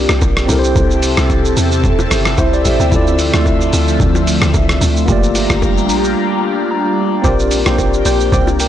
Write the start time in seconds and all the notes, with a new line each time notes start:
Already playing: A#3 C4 D4 F4 G4 A#4 D5
0.09 C2, cross-stick, low bongo, shaker
0.21 A#1, kick, high bongo, shaker
0.37 cross-stick, shaker
0.46 C2 C3 C4 E4 G4 A4 E5, open hi-hat, low conga, shaker
0.51 A4 A#4
0.59 C5
0.64 shaker
0.75 C2, kick, low conga, shaker
0.91 shaker
1.02 open hi-hat, shaker
1.17 C2, cross-stick, low bongo, shaker
1.30 kick, high bongo, shaker
1.45 shaker
1.57 E2, open hi-hat, shaker
1.72 shaker
1.84 kick, low conga, shaker
1.99 low bongo, shaker
2.11 G1, cross-stick, open hi-hat, shaker
2.25 cross-stick, low bongo, shaker
2.38 C2 E4 C5, kick, high bongo, shaker
2.53 D5, shaker
2.65 A1 G4 E5, open hi-hat, low conga, shaker
2.80 D2 G5, shaker
2.90 D2 D3 F3 A3 C4 E4 F4, kick, low conga, shaker
2.94 A4 D5
3.07 shaker
3.19 open hi-hat, shaker
3.34 D2, cross-stick, low bongo, shaker
3.46 kick, high bongo, shaker
3.61 shaker
3.73 D2, open hi-hat, shaker
3.88 shaker
4.00 D2, kick, low conga, shaker
4.15 low bongo, shaker
4.27 open hi-hat, shaker
4.42 D2, cross-stick, low bongo, shaker
4.54 C2, kick, high bongo, shaker
4.69 cross-stick, shaker
4.81 D2, open hi-hat, low conga, shaker
4.96 shaker
5.06 G1 G3 A#3 D4 F4 G4 A#5, kick, low conga, shaker
5.11 A3 D5
5.23 shaker
5.35 open hi-hat, low bongo, shaker
5.50 G1, kick, cross-stick, low bongo, shaker
5.62 kick, high bongo, shaker
5.77 shaker
5.89 A#1, open hi-hat, shaker
6.04 shaker
6.71 A#5
7.22 A#1 A#3 C4 F4 G4 C5 D5 G5, kick, low conga, shaker
7.27 A#4 D5
7.39 shaker
7.51 open hi-hat, shaker
7.66 A#1 C5 D5 G5, cross-stick, low bongo, shaker
7.78 kick, high bongo, shaker
7.93 shaker
8.05 A#1 C5 D5 G5, open hi-hat, shaker
8.20 shaker
8.32 C2 C5 D5 G5, kick, low conga, shaker
8.47 low bongo, shaker
8.60 A#4 G5, open hi-hat, shaker